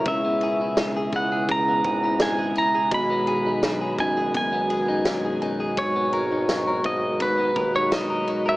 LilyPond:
<<
  \new Staff \with { instrumentName = "Pedal steel guitar" } { \time 4/4 \key b \major \tempo 4 = 84 e''4. fis''8 ais''4 gis''8 ais''8 | b''4. gis''8 gis''4. r8 | cis''4. dis''8 b'8. cis''16 dis''8. e''16 | }
  \new Staff \with { instrumentName = "Synth bell" } { \time 4/4 \key b \major e''8 r2. r8 | dis''4 r2 r8 gis''8~ | gis''8 r2. r8 | }
  \new Staff \with { instrumentName = "Clean electric guitar" } { \time 4/4 \key b \major cis16 b16 gis'16 e'16 gis16 gis'16 e'16 gis'16 cis16 b16 gis'16 e'16 gis16 gis'16 e'16 gis'16 | b,16 b16 gis'16 dis'16 fis16 gis'16 dis'16 gis'16 b,16 b16 gis'16 dis'16 fis16 gis'16 dis'16 gis'16 | gis,16 b16 ais'16 dis'16 fis16 ais'16 dis'8 gis,16 b16 ais'16 dis'16 fis16 ais'16 dis'16 ais'16 | }
  \new Staff \with { instrumentName = "Tonewheel organ" } { \time 4/4 \key b \major e'1 | fis'1~ | fis'1 | }
  \new Staff \with { instrumentName = "Tonewheel organ" } { \clef bass \time 4/4 \key b \major << { <b, gis>1~ | <b, gis>1~ | <b, gis>1 | } \\ { cis1 | dis1 | r1 | } >> }
  \new Staff \with { instrumentName = "Analog synth bass" } { \clef bass \time 4/4 \key b \major cis,4. cis,4 gis,,4 r8 | b,,8. b,,8. fis,,2 fis,,8 | gis,,4. gis,,4 dis,4 r8 | }
  \new DrumStaff \with { instrumentName = "Drums" } \drummode { \time 4/4 <bd cymr>8 cymr8 <cymr sn tamb>8 <bd cymr>8 <bd cymr>8 <bd cymr>8 <cymr sn tamb>8 cymr8 | <bd cymr>8 cymr8 <cymr sn tamb>8 <bd cymr>8 <bd cymr>8 cymr8 <cymr sn tamb>8 cymr8 | <bd cymr>8 cymr8 <cymr sn tamb>8 <bd cymr>8 <bd cymr>8 <bd cymr>8 <cymr sn tamb>8 cymr8 | }
>>